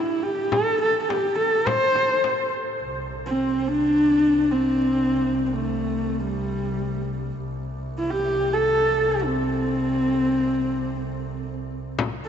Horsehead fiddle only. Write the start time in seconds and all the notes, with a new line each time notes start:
Already playing: E4
0.23 G4
0.52 A4
0.82 A4
1.02 A4
1.09 G4
1.39 A4
1.67 C5
3.26 C4
3.67 D4
4.51 C4
5.47 C4
5.53 A3
6.25 G3
7.98 E4
8.11 G4
8.53 A4
9.11 G4
9.25 C4